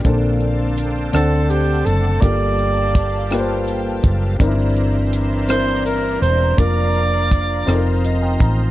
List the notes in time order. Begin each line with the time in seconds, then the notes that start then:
0.04 A#1 A#2 D3 A#3 C4 D4 A4 C5 D5 F5 A5, kick, closed hi-hat
0.40 closed hi-hat
0.78 closed hi-hat
1.12 D2 D3 F3 C4 D4 A4 F#5, cross-stick, closed hi-hat
1.20 A3
1.50 G4, closed hi-hat
1.85 F#1 A4, closed hi-hat
2.21 G1 G2 G3 A#3 F4 G4 A4 D5 F5 G5 A5, kick, closed hi-hat
2.58 closed hi-hat
2.95 kick, closed hi-hat
3.30 A#3 F4 G4 B4, cross-stick, closed hi-hat
3.38 C5
3.68 closed hi-hat
4.04 F#1, kick, closed hi-hat
4.39 G1 G2 E3 C4 D4 D#4 A#4 C5 D5 E5 A#5, kick, closed hi-hat
4.47 E4
4.76 closed hi-hat
5.13 closed hi-hat
5.48 C4 D4 E4 A#4 C5, cross-stick, closed hi-hat
5.86 A#4, closed hi-hat
6.22 E1 C5, closed hi-hat
6.57 F1 F3 A#3 D4 F4 A#4 D5 F5, kick, closed hi-hat
6.95 closed hi-hat
7.31 kick, closed hi-hat
7.66 F1 F3 C4 D#4 F4 A4 C5, cross-stick, closed hi-hat
7.74 A#4
8.04 D#5, closed hi-hat
8.22 G5
8.40 A1 A#5, kick, closed hi-hat